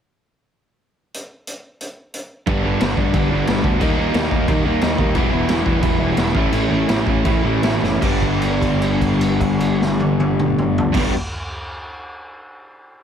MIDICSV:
0, 0, Header, 1, 6, 480
1, 0, Start_track
1, 0, Tempo, 334262
1, 1641, Time_signature, 4, 2, 24, 8
1, 7406, Tempo, 346620
1, 9806, Tempo, 378310
1, 11246, Tempo, 394477
1, 17337, End_track
2, 0, Start_track
2, 0, Title_t, "Distorted electric guitar"
2, 0, Program_c, 0, 30
2, 11276, Note_on_c, 0, 67, 106
2, 14816, Note_off_c, 0, 67, 0
2, 14821, Note_on_c, 0, 67, 103
2, 15027, Note_off_c, 0, 67, 0
2, 17337, End_track
3, 0, Start_track
3, 0, Title_t, "Overdriven electric guitar"
3, 0, Program_c, 1, 29
3, 3539, Note_on_c, 1, 43, 89
3, 3550, Note_on_c, 1, 50, 90
3, 3555, Note_on_c, 1, 55, 108
3, 3560, Note_on_c, 1, 59, 104
3, 3560, Note_on_c, 1, 62, 108
3, 3768, Note_off_c, 1, 62, 0
3, 3770, Note_off_c, 1, 59, 0
3, 3784, Note_off_c, 1, 50, 0
3, 3785, Note_on_c, 1, 62, 95
3, 3787, Note_on_c, 1, 59, 83
3, 3790, Note_off_c, 1, 43, 0
3, 3790, Note_off_c, 1, 55, 0
3, 3796, Note_on_c, 1, 55, 76
3, 3802, Note_on_c, 1, 50, 75
3, 3807, Note_on_c, 1, 43, 80
3, 4003, Note_off_c, 1, 43, 0
3, 4011, Note_off_c, 1, 50, 0
3, 4020, Note_off_c, 1, 59, 0
3, 4020, Note_on_c, 1, 43, 78
3, 4028, Note_on_c, 1, 50, 91
3, 4031, Note_off_c, 1, 55, 0
3, 4033, Note_off_c, 1, 62, 0
3, 4037, Note_on_c, 1, 55, 88
3, 4038, Note_on_c, 1, 59, 83
3, 4050, Note_on_c, 1, 62, 91
3, 4251, Note_off_c, 1, 62, 0
3, 4258, Note_off_c, 1, 59, 0
3, 4268, Note_on_c, 1, 62, 99
3, 4270, Note_off_c, 1, 50, 0
3, 4270, Note_off_c, 1, 55, 0
3, 4273, Note_off_c, 1, 43, 0
3, 4275, Note_on_c, 1, 59, 83
3, 4276, Note_on_c, 1, 55, 84
3, 4287, Note_on_c, 1, 50, 73
3, 4290, Note_on_c, 1, 43, 77
3, 4486, Note_off_c, 1, 43, 0
3, 4493, Note_off_c, 1, 50, 0
3, 4503, Note_off_c, 1, 59, 0
3, 4503, Note_on_c, 1, 43, 93
3, 4508, Note_off_c, 1, 62, 0
3, 4510, Note_on_c, 1, 50, 93
3, 4515, Note_off_c, 1, 55, 0
3, 4521, Note_on_c, 1, 55, 89
3, 4521, Note_on_c, 1, 59, 100
3, 4525, Note_on_c, 1, 62, 108
3, 4733, Note_off_c, 1, 62, 0
3, 4740, Note_off_c, 1, 59, 0
3, 4750, Note_on_c, 1, 62, 95
3, 4756, Note_off_c, 1, 50, 0
3, 4757, Note_on_c, 1, 59, 87
3, 4758, Note_off_c, 1, 43, 0
3, 4758, Note_off_c, 1, 55, 0
3, 4764, Note_on_c, 1, 55, 88
3, 4773, Note_on_c, 1, 50, 82
3, 4776, Note_on_c, 1, 43, 68
3, 4969, Note_off_c, 1, 43, 0
3, 4976, Note_off_c, 1, 50, 0
3, 4987, Note_on_c, 1, 43, 76
3, 4988, Note_off_c, 1, 59, 0
3, 4991, Note_off_c, 1, 62, 0
3, 4994, Note_off_c, 1, 55, 0
3, 4994, Note_on_c, 1, 50, 88
3, 5000, Note_on_c, 1, 55, 83
3, 5005, Note_on_c, 1, 59, 102
3, 5008, Note_on_c, 1, 62, 91
3, 5206, Note_off_c, 1, 62, 0
3, 5219, Note_off_c, 1, 59, 0
3, 5223, Note_on_c, 1, 62, 102
3, 5224, Note_off_c, 1, 50, 0
3, 5231, Note_off_c, 1, 55, 0
3, 5236, Note_on_c, 1, 55, 84
3, 5236, Note_on_c, 1, 59, 90
3, 5238, Note_off_c, 1, 43, 0
3, 5241, Note_on_c, 1, 50, 84
3, 5255, Note_on_c, 1, 43, 79
3, 5456, Note_off_c, 1, 62, 0
3, 5463, Note_off_c, 1, 59, 0
3, 5465, Note_off_c, 1, 50, 0
3, 5472, Note_off_c, 1, 43, 0
3, 5475, Note_on_c, 1, 51, 96
3, 5478, Note_off_c, 1, 55, 0
3, 5483, Note_on_c, 1, 55, 95
3, 5485, Note_on_c, 1, 58, 97
3, 5487, Note_on_c, 1, 63, 108
3, 5698, Note_off_c, 1, 63, 0
3, 5706, Note_off_c, 1, 58, 0
3, 5716, Note_on_c, 1, 63, 90
3, 5720, Note_off_c, 1, 51, 0
3, 5723, Note_on_c, 1, 58, 83
3, 5725, Note_off_c, 1, 55, 0
3, 5731, Note_on_c, 1, 55, 89
3, 5737, Note_on_c, 1, 51, 77
3, 5937, Note_off_c, 1, 51, 0
3, 5952, Note_off_c, 1, 58, 0
3, 5954, Note_on_c, 1, 51, 82
3, 5957, Note_off_c, 1, 55, 0
3, 5960, Note_off_c, 1, 63, 0
3, 5963, Note_on_c, 1, 55, 89
3, 5969, Note_on_c, 1, 58, 96
3, 5977, Note_on_c, 1, 63, 98
3, 6176, Note_off_c, 1, 63, 0
3, 6183, Note_off_c, 1, 58, 0
3, 6191, Note_off_c, 1, 55, 0
3, 6194, Note_on_c, 1, 63, 94
3, 6200, Note_on_c, 1, 58, 88
3, 6201, Note_off_c, 1, 51, 0
3, 6208, Note_on_c, 1, 55, 82
3, 6218, Note_on_c, 1, 51, 71
3, 6414, Note_off_c, 1, 51, 0
3, 6419, Note_off_c, 1, 55, 0
3, 6428, Note_off_c, 1, 58, 0
3, 6430, Note_off_c, 1, 63, 0
3, 6431, Note_on_c, 1, 51, 94
3, 6437, Note_on_c, 1, 55, 93
3, 6446, Note_on_c, 1, 58, 95
3, 6447, Note_on_c, 1, 63, 96
3, 6660, Note_off_c, 1, 63, 0
3, 6666, Note_off_c, 1, 58, 0
3, 6677, Note_off_c, 1, 55, 0
3, 6677, Note_on_c, 1, 63, 95
3, 6680, Note_off_c, 1, 51, 0
3, 6683, Note_on_c, 1, 58, 92
3, 6694, Note_on_c, 1, 55, 84
3, 6697, Note_on_c, 1, 51, 78
3, 6904, Note_off_c, 1, 51, 0
3, 6913, Note_off_c, 1, 55, 0
3, 6918, Note_off_c, 1, 58, 0
3, 6921, Note_on_c, 1, 51, 84
3, 6925, Note_off_c, 1, 63, 0
3, 6931, Note_on_c, 1, 55, 83
3, 6935, Note_on_c, 1, 58, 91
3, 6942, Note_on_c, 1, 63, 93
3, 7134, Note_off_c, 1, 63, 0
3, 7138, Note_off_c, 1, 58, 0
3, 7146, Note_off_c, 1, 55, 0
3, 7151, Note_off_c, 1, 51, 0
3, 7152, Note_on_c, 1, 63, 98
3, 7155, Note_on_c, 1, 58, 97
3, 7163, Note_on_c, 1, 55, 90
3, 7168, Note_on_c, 1, 51, 85
3, 7385, Note_off_c, 1, 63, 0
3, 7387, Note_off_c, 1, 58, 0
3, 7391, Note_off_c, 1, 55, 0
3, 7393, Note_off_c, 1, 51, 0
3, 7398, Note_on_c, 1, 52, 98
3, 7405, Note_on_c, 1, 55, 109
3, 7409, Note_on_c, 1, 59, 112
3, 7421, Note_on_c, 1, 64, 105
3, 7634, Note_off_c, 1, 59, 0
3, 7639, Note_off_c, 1, 64, 0
3, 7643, Note_off_c, 1, 55, 0
3, 7645, Note_on_c, 1, 64, 85
3, 7651, Note_on_c, 1, 59, 84
3, 7658, Note_off_c, 1, 52, 0
3, 7659, Note_on_c, 1, 55, 77
3, 7663, Note_on_c, 1, 52, 67
3, 7855, Note_off_c, 1, 55, 0
3, 7856, Note_off_c, 1, 52, 0
3, 7858, Note_off_c, 1, 59, 0
3, 7862, Note_on_c, 1, 52, 89
3, 7872, Note_on_c, 1, 55, 92
3, 7875, Note_on_c, 1, 59, 95
3, 7877, Note_off_c, 1, 64, 0
3, 7882, Note_on_c, 1, 64, 103
3, 8085, Note_off_c, 1, 59, 0
3, 8088, Note_off_c, 1, 64, 0
3, 8093, Note_off_c, 1, 55, 0
3, 8093, Note_on_c, 1, 64, 100
3, 8102, Note_on_c, 1, 59, 87
3, 8104, Note_off_c, 1, 52, 0
3, 8110, Note_on_c, 1, 52, 80
3, 8110, Note_on_c, 1, 55, 77
3, 8305, Note_off_c, 1, 52, 0
3, 8319, Note_off_c, 1, 55, 0
3, 8319, Note_off_c, 1, 59, 0
3, 8322, Note_on_c, 1, 52, 91
3, 8323, Note_off_c, 1, 64, 0
3, 8336, Note_on_c, 1, 55, 98
3, 8336, Note_on_c, 1, 59, 104
3, 8340, Note_on_c, 1, 64, 109
3, 8546, Note_off_c, 1, 64, 0
3, 8559, Note_off_c, 1, 59, 0
3, 8560, Note_off_c, 1, 55, 0
3, 8563, Note_on_c, 1, 64, 96
3, 8567, Note_off_c, 1, 52, 0
3, 8575, Note_on_c, 1, 59, 91
3, 8577, Note_on_c, 1, 55, 80
3, 8583, Note_on_c, 1, 52, 76
3, 8799, Note_off_c, 1, 52, 0
3, 8805, Note_off_c, 1, 55, 0
3, 8813, Note_off_c, 1, 59, 0
3, 8816, Note_on_c, 1, 52, 80
3, 8820, Note_off_c, 1, 64, 0
3, 8821, Note_on_c, 1, 55, 81
3, 8829, Note_on_c, 1, 59, 87
3, 8837, Note_on_c, 1, 64, 89
3, 9042, Note_off_c, 1, 52, 0
3, 9049, Note_off_c, 1, 55, 0
3, 9053, Note_off_c, 1, 59, 0
3, 9055, Note_on_c, 1, 45, 97
3, 9057, Note_off_c, 1, 64, 0
3, 9058, Note_on_c, 1, 52, 104
3, 9067, Note_on_c, 1, 57, 102
3, 9068, Note_on_c, 1, 61, 108
3, 9078, Note_on_c, 1, 64, 125
3, 9288, Note_off_c, 1, 64, 0
3, 9295, Note_off_c, 1, 61, 0
3, 9298, Note_off_c, 1, 57, 0
3, 9304, Note_on_c, 1, 64, 114
3, 9305, Note_off_c, 1, 52, 0
3, 9307, Note_off_c, 1, 45, 0
3, 9312, Note_on_c, 1, 61, 111
3, 9315, Note_on_c, 1, 57, 104
3, 9322, Note_on_c, 1, 52, 98
3, 9324, Note_on_c, 1, 45, 98
3, 9531, Note_off_c, 1, 45, 0
3, 9534, Note_off_c, 1, 52, 0
3, 9545, Note_off_c, 1, 57, 0
3, 9548, Note_on_c, 1, 45, 77
3, 9549, Note_off_c, 1, 61, 0
3, 9550, Note_on_c, 1, 52, 84
3, 9554, Note_off_c, 1, 64, 0
3, 9562, Note_on_c, 1, 57, 89
3, 9566, Note_on_c, 1, 61, 92
3, 9570, Note_on_c, 1, 64, 94
3, 9782, Note_off_c, 1, 64, 0
3, 9788, Note_off_c, 1, 61, 0
3, 9792, Note_off_c, 1, 57, 0
3, 9798, Note_off_c, 1, 52, 0
3, 9798, Note_on_c, 1, 64, 94
3, 9802, Note_off_c, 1, 45, 0
3, 9804, Note_on_c, 1, 61, 89
3, 9808, Note_on_c, 1, 57, 78
3, 9814, Note_on_c, 1, 52, 80
3, 9818, Note_on_c, 1, 45, 80
3, 10003, Note_off_c, 1, 45, 0
3, 10013, Note_off_c, 1, 52, 0
3, 10018, Note_off_c, 1, 57, 0
3, 10018, Note_on_c, 1, 45, 82
3, 10023, Note_off_c, 1, 61, 0
3, 10028, Note_off_c, 1, 64, 0
3, 10028, Note_on_c, 1, 52, 82
3, 10034, Note_on_c, 1, 57, 97
3, 10038, Note_on_c, 1, 61, 87
3, 10043, Note_on_c, 1, 64, 100
3, 10249, Note_off_c, 1, 64, 0
3, 10260, Note_off_c, 1, 61, 0
3, 10264, Note_on_c, 1, 64, 98
3, 10265, Note_off_c, 1, 57, 0
3, 10269, Note_off_c, 1, 52, 0
3, 10273, Note_off_c, 1, 45, 0
3, 10275, Note_on_c, 1, 61, 100
3, 10281, Note_on_c, 1, 57, 81
3, 10285, Note_on_c, 1, 52, 82
3, 10289, Note_on_c, 1, 45, 74
3, 10482, Note_off_c, 1, 45, 0
3, 10491, Note_off_c, 1, 52, 0
3, 10497, Note_on_c, 1, 45, 77
3, 10498, Note_off_c, 1, 57, 0
3, 10498, Note_off_c, 1, 61, 0
3, 10506, Note_off_c, 1, 64, 0
3, 10506, Note_on_c, 1, 52, 91
3, 10513, Note_on_c, 1, 57, 83
3, 10513, Note_on_c, 1, 61, 96
3, 10521, Note_on_c, 1, 64, 91
3, 10734, Note_off_c, 1, 64, 0
3, 10736, Note_off_c, 1, 61, 0
3, 10740, Note_off_c, 1, 57, 0
3, 10748, Note_off_c, 1, 52, 0
3, 10749, Note_on_c, 1, 64, 89
3, 10752, Note_on_c, 1, 61, 80
3, 10755, Note_off_c, 1, 45, 0
3, 10755, Note_on_c, 1, 57, 88
3, 10763, Note_on_c, 1, 52, 78
3, 10770, Note_on_c, 1, 45, 74
3, 10982, Note_off_c, 1, 45, 0
3, 10988, Note_off_c, 1, 52, 0
3, 10988, Note_off_c, 1, 57, 0
3, 10997, Note_off_c, 1, 61, 0
3, 10997, Note_on_c, 1, 45, 93
3, 11000, Note_off_c, 1, 64, 0
3, 11003, Note_on_c, 1, 52, 87
3, 11003, Note_on_c, 1, 57, 102
3, 11012, Note_on_c, 1, 61, 101
3, 11016, Note_on_c, 1, 64, 101
3, 11231, Note_off_c, 1, 45, 0
3, 11233, Note_off_c, 1, 57, 0
3, 11234, Note_off_c, 1, 52, 0
3, 11238, Note_off_c, 1, 61, 0
3, 11239, Note_on_c, 1, 43, 99
3, 11240, Note_off_c, 1, 64, 0
3, 11253, Note_on_c, 1, 50, 103
3, 11264, Note_on_c, 1, 55, 108
3, 11274, Note_on_c, 1, 59, 110
3, 11288, Note_on_c, 1, 62, 117
3, 14767, Note_off_c, 1, 43, 0
3, 14772, Note_on_c, 1, 43, 89
3, 14779, Note_off_c, 1, 50, 0
3, 14783, Note_on_c, 1, 50, 100
3, 14794, Note_off_c, 1, 55, 0
3, 14799, Note_on_c, 1, 55, 100
3, 14804, Note_off_c, 1, 59, 0
3, 14808, Note_on_c, 1, 59, 102
3, 14813, Note_off_c, 1, 62, 0
3, 14818, Note_on_c, 1, 62, 105
3, 15003, Note_off_c, 1, 43, 0
3, 15008, Note_off_c, 1, 50, 0
3, 15016, Note_off_c, 1, 55, 0
3, 15021, Note_off_c, 1, 59, 0
3, 15026, Note_off_c, 1, 62, 0
3, 17337, End_track
4, 0, Start_track
4, 0, Title_t, "Distorted electric guitar"
4, 0, Program_c, 2, 30
4, 7389, Note_on_c, 2, 40, 94
4, 7420, Note_on_c, 2, 47, 99
4, 9041, Note_off_c, 2, 40, 0
4, 9047, Note_off_c, 2, 47, 0
4, 17337, End_track
5, 0, Start_track
5, 0, Title_t, "Picked electric bass"
5, 0, Program_c, 3, 34
5, 3548, Note_on_c, 3, 31, 98
5, 3725, Note_off_c, 3, 31, 0
5, 3797, Note_on_c, 3, 31, 86
5, 3971, Note_off_c, 3, 31, 0
5, 4052, Note_on_c, 3, 31, 90
5, 4221, Note_off_c, 3, 31, 0
5, 4265, Note_on_c, 3, 31, 86
5, 4443, Note_off_c, 3, 31, 0
5, 4503, Note_on_c, 3, 31, 99
5, 4682, Note_off_c, 3, 31, 0
5, 4758, Note_on_c, 3, 31, 91
5, 4932, Note_off_c, 3, 31, 0
5, 4998, Note_on_c, 3, 31, 92
5, 5172, Note_off_c, 3, 31, 0
5, 5225, Note_on_c, 3, 38, 94
5, 5404, Note_off_c, 3, 38, 0
5, 5472, Note_on_c, 3, 39, 97
5, 5649, Note_off_c, 3, 39, 0
5, 5707, Note_on_c, 3, 39, 100
5, 5886, Note_off_c, 3, 39, 0
5, 5949, Note_on_c, 3, 39, 94
5, 6128, Note_off_c, 3, 39, 0
5, 6197, Note_on_c, 3, 39, 87
5, 6373, Note_off_c, 3, 39, 0
5, 6433, Note_on_c, 3, 39, 95
5, 6610, Note_off_c, 3, 39, 0
5, 6677, Note_on_c, 3, 39, 86
5, 6854, Note_off_c, 3, 39, 0
5, 6928, Note_on_c, 3, 39, 89
5, 7102, Note_off_c, 3, 39, 0
5, 7158, Note_on_c, 3, 39, 93
5, 7401, Note_on_c, 3, 28, 99
5, 7422, Note_off_c, 3, 39, 0
5, 7572, Note_off_c, 3, 28, 0
5, 7645, Note_on_c, 3, 28, 96
5, 7813, Note_off_c, 3, 28, 0
5, 7865, Note_on_c, 3, 28, 94
5, 8038, Note_off_c, 3, 28, 0
5, 8102, Note_on_c, 3, 28, 92
5, 8276, Note_off_c, 3, 28, 0
5, 8340, Note_on_c, 3, 28, 97
5, 8514, Note_off_c, 3, 28, 0
5, 8569, Note_on_c, 3, 28, 90
5, 8748, Note_off_c, 3, 28, 0
5, 8819, Note_on_c, 3, 28, 93
5, 9051, Note_off_c, 3, 28, 0
5, 9051, Note_on_c, 3, 33, 86
5, 9233, Note_off_c, 3, 33, 0
5, 9303, Note_on_c, 3, 33, 90
5, 9484, Note_off_c, 3, 33, 0
5, 9552, Note_on_c, 3, 33, 89
5, 9734, Note_off_c, 3, 33, 0
5, 9796, Note_on_c, 3, 33, 87
5, 9968, Note_off_c, 3, 33, 0
5, 10029, Note_on_c, 3, 33, 85
5, 10202, Note_off_c, 3, 33, 0
5, 10266, Note_on_c, 3, 33, 94
5, 10441, Note_off_c, 3, 33, 0
5, 10499, Note_on_c, 3, 33, 88
5, 10678, Note_off_c, 3, 33, 0
5, 10740, Note_on_c, 3, 33, 86
5, 10922, Note_off_c, 3, 33, 0
5, 10997, Note_on_c, 3, 30, 92
5, 11177, Note_off_c, 3, 30, 0
5, 11243, Note_on_c, 3, 31, 97
5, 14695, Note_off_c, 3, 31, 0
5, 14792, Note_on_c, 3, 31, 94
5, 14997, Note_off_c, 3, 31, 0
5, 17337, End_track
6, 0, Start_track
6, 0, Title_t, "Drums"
6, 1641, Note_on_c, 9, 42, 62
6, 1785, Note_off_c, 9, 42, 0
6, 2113, Note_on_c, 9, 42, 61
6, 2256, Note_off_c, 9, 42, 0
6, 2594, Note_on_c, 9, 42, 60
6, 2737, Note_off_c, 9, 42, 0
6, 3069, Note_on_c, 9, 42, 58
6, 3212, Note_off_c, 9, 42, 0
6, 3545, Note_on_c, 9, 49, 62
6, 3549, Note_on_c, 9, 36, 113
6, 3689, Note_off_c, 9, 49, 0
6, 3693, Note_off_c, 9, 36, 0
6, 4028, Note_on_c, 9, 49, 69
6, 4042, Note_on_c, 9, 38, 118
6, 4171, Note_off_c, 9, 49, 0
6, 4186, Note_off_c, 9, 38, 0
6, 4269, Note_on_c, 9, 36, 82
6, 4412, Note_off_c, 9, 36, 0
6, 4505, Note_on_c, 9, 49, 63
6, 4507, Note_on_c, 9, 36, 111
6, 4649, Note_off_c, 9, 49, 0
6, 4651, Note_off_c, 9, 36, 0
6, 4988, Note_on_c, 9, 49, 62
6, 5002, Note_on_c, 9, 38, 113
6, 5131, Note_off_c, 9, 49, 0
6, 5145, Note_off_c, 9, 38, 0
6, 5229, Note_on_c, 9, 36, 86
6, 5372, Note_off_c, 9, 36, 0
6, 5469, Note_on_c, 9, 36, 111
6, 5469, Note_on_c, 9, 49, 60
6, 5612, Note_off_c, 9, 49, 0
6, 5613, Note_off_c, 9, 36, 0
6, 5948, Note_on_c, 9, 49, 60
6, 5962, Note_on_c, 9, 38, 116
6, 6092, Note_off_c, 9, 49, 0
6, 6106, Note_off_c, 9, 38, 0
6, 6193, Note_on_c, 9, 36, 91
6, 6337, Note_off_c, 9, 36, 0
6, 6436, Note_on_c, 9, 36, 119
6, 6438, Note_on_c, 9, 49, 60
6, 6579, Note_off_c, 9, 36, 0
6, 6581, Note_off_c, 9, 49, 0
6, 6913, Note_on_c, 9, 49, 57
6, 6928, Note_on_c, 9, 38, 122
6, 7057, Note_off_c, 9, 49, 0
6, 7071, Note_off_c, 9, 38, 0
6, 7158, Note_on_c, 9, 36, 92
6, 7302, Note_off_c, 9, 36, 0
6, 7393, Note_on_c, 9, 49, 58
6, 7397, Note_on_c, 9, 36, 113
6, 7531, Note_off_c, 9, 49, 0
6, 7536, Note_off_c, 9, 36, 0
6, 7861, Note_on_c, 9, 49, 63
6, 7875, Note_on_c, 9, 38, 106
6, 8000, Note_off_c, 9, 49, 0
6, 8013, Note_off_c, 9, 38, 0
6, 8101, Note_on_c, 9, 36, 91
6, 8240, Note_off_c, 9, 36, 0
6, 8332, Note_on_c, 9, 49, 68
6, 8336, Note_on_c, 9, 36, 118
6, 8470, Note_off_c, 9, 49, 0
6, 8474, Note_off_c, 9, 36, 0
6, 8807, Note_on_c, 9, 49, 69
6, 8821, Note_on_c, 9, 38, 112
6, 8946, Note_off_c, 9, 49, 0
6, 8960, Note_off_c, 9, 38, 0
6, 9053, Note_on_c, 9, 36, 105
6, 9192, Note_off_c, 9, 36, 0
6, 9301, Note_on_c, 9, 49, 62
6, 9439, Note_off_c, 9, 49, 0
6, 9801, Note_on_c, 9, 49, 60
6, 9814, Note_on_c, 9, 38, 118
6, 9928, Note_off_c, 9, 49, 0
6, 9941, Note_off_c, 9, 38, 0
6, 10031, Note_on_c, 9, 36, 93
6, 10157, Note_off_c, 9, 36, 0
6, 10262, Note_on_c, 9, 49, 60
6, 10264, Note_on_c, 9, 36, 116
6, 10389, Note_off_c, 9, 49, 0
6, 10391, Note_off_c, 9, 36, 0
6, 10745, Note_on_c, 9, 49, 59
6, 10757, Note_on_c, 9, 38, 115
6, 10872, Note_off_c, 9, 49, 0
6, 10884, Note_off_c, 9, 38, 0
6, 11005, Note_on_c, 9, 38, 65
6, 11132, Note_off_c, 9, 38, 0
6, 11241, Note_on_c, 9, 36, 108
6, 11243, Note_on_c, 9, 57, 93
6, 11363, Note_off_c, 9, 36, 0
6, 11365, Note_off_c, 9, 57, 0
6, 11483, Note_on_c, 9, 36, 64
6, 11488, Note_on_c, 9, 57, 38
6, 11605, Note_off_c, 9, 36, 0
6, 11610, Note_off_c, 9, 57, 0
6, 11722, Note_on_c, 9, 49, 47
6, 11844, Note_off_c, 9, 49, 0
6, 11965, Note_on_c, 9, 36, 62
6, 11971, Note_on_c, 9, 57, 49
6, 12087, Note_off_c, 9, 36, 0
6, 12093, Note_off_c, 9, 57, 0
6, 12208, Note_on_c, 9, 49, 51
6, 12330, Note_off_c, 9, 49, 0
6, 12447, Note_on_c, 9, 36, 64
6, 12449, Note_on_c, 9, 57, 50
6, 12569, Note_off_c, 9, 36, 0
6, 12570, Note_off_c, 9, 57, 0
6, 12686, Note_on_c, 9, 49, 55
6, 12808, Note_off_c, 9, 49, 0
6, 12927, Note_on_c, 9, 36, 67
6, 12928, Note_on_c, 9, 57, 52
6, 13048, Note_off_c, 9, 36, 0
6, 13050, Note_off_c, 9, 57, 0
6, 13167, Note_on_c, 9, 49, 52
6, 13289, Note_off_c, 9, 49, 0
6, 13426, Note_on_c, 9, 38, 83
6, 13548, Note_off_c, 9, 38, 0
6, 13650, Note_on_c, 9, 48, 98
6, 13772, Note_off_c, 9, 48, 0
6, 13892, Note_on_c, 9, 48, 99
6, 14014, Note_off_c, 9, 48, 0
6, 14130, Note_on_c, 9, 47, 102
6, 14252, Note_off_c, 9, 47, 0
6, 14361, Note_on_c, 9, 45, 99
6, 14483, Note_off_c, 9, 45, 0
6, 14600, Note_on_c, 9, 43, 115
6, 14721, Note_off_c, 9, 43, 0
6, 14794, Note_on_c, 9, 36, 121
6, 14797, Note_on_c, 9, 57, 108
6, 14809, Note_on_c, 9, 38, 92
6, 14915, Note_off_c, 9, 36, 0
6, 14919, Note_off_c, 9, 57, 0
6, 14931, Note_off_c, 9, 38, 0
6, 17337, End_track
0, 0, End_of_file